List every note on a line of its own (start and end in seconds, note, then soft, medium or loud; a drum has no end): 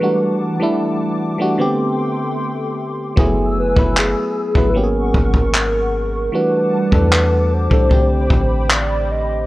0.00 0.50 E3 medium
0.00 1.58 E3 medium
0.00 0.50 G3 medium
0.00 1.58 G3 medium
0.00 0.51 A3 medium
0.00 0.51 D4 medium
0.00 0.52 F#4 medium
0.00 0.42 B4 medium
0.00 1.56 F#5 medium
0.00 1.58 A5 medium
0.00 3.14 D6 medium
0.59 1.25 E3 medium
0.59 1.26 G3 medium
0.59 1.26 A3 medium
0.59 1.27 D4 medium
0.59 1.27 E4 medium
1.38 1.59 E3 medium
1.38 1.59 G3 medium
1.38 1.57 A3 medium
1.38 1.60 D4 medium
1.38 1.60 F#4 medium
1.58 2.90 D3 medium
1.58 2.90 A3 medium
1.58 3.16 A3 medium
1.58 2.90 B3 medium
1.58 2.91 C4 medium
1.58 2.91 G4 loud
1.58 3.16 A4 medium
1.58 3.16 G5 medium
1.58 3.16 C6 medium
3.16 3.74 F#1 loud
3.16 3.66 F#3 medium
3.16 3.66 A3 medium
3.16 4.74 A3 medium
3.16 3.66 B3 medium
3.16 3.67 E4 medium
3.16 3.67 G#4 medium
3.16 4.74 G#5 medium
3.16 4.74 E6 medium
3.16 kick loud
3.59 4.00 B4 medium
3.76 4.14 F#1 medium
3.76 4.41 F#3 medium
3.76 4.42 A3 medium
3.76 4.42 B3 medium
3.76 4.43 E4 medium
3.76 4.43 B4 medium
3.76 kick medium
3.97 4.71 G#4 medium
3.97 clap loud
4.55 5.12 G#1 loud
4.55 4.73 F#3 medium
4.55 4.75 A3 medium
4.55 4.74 B3 medium
4.55 4.76 E4 medium
4.55 4.77 B4 medium
4.55 kick medium
4.70 4.79 B4 medium
4.74 6.06 F#3 medium
4.74 6.06 A#3 medium
4.74 6.06 B3 medium
4.74 6.07 C#4 medium
4.74 4.83 G4 medium
4.74 6.31 A#4 medium
4.74 5.55 A#4 loud
4.74 6.32 F#5 medium
4.74 6.32 C#6 medium
4.84 6.10 G#4 medium
5.15 6.29 G#1 medium
5.15 kick medium
5.34 kick medium
5.55 6.30 A#4 medium
5.55 clap loud
6.32 6.82 E3 medium
6.32 7.89 G3 medium
6.32 6.82 G3 medium
6.32 6.82 A3 medium
6.32 6.83 D4 medium
6.32 6.83 F#4 medium
6.32 7.55 B4 loud
6.32 7.89 F#5 medium
6.32 7.89 A5 medium
6.32 9.46 D6 medium
6.91 7.68 E2 loud
6.91 7.57 E3 medium
6.91 7.58 G3 medium
6.91 7.58 A3 medium
6.91 7.59 D4 medium
6.91 7.59 A4 medium
6.91 kick medium
7.13 clap loud
7.53 8.73 C5 loud
7.70 8.28 C2 loud
7.70 7.90 E3 medium
7.70 7.91 G3 medium
7.70 7.89 A3 medium
7.70 7.90 D4 medium
7.70 7.92 A4 medium
7.70 kick medium
7.89 9.21 D3 medium
7.89 9.21 A3 medium
7.89 9.22 C4 medium
7.89 9.22 D4 medium
7.89 9.23 G4 medium
7.89 9.47 C5 medium
7.89 9.47 G5 medium
7.89 9.47 B5 medium
7.89 kick medium
8.30 9.45 A1 loud
8.30 kick medium
8.71 9.13 D5 loud
8.71 clap loud
9.11 9.47 D#5 loud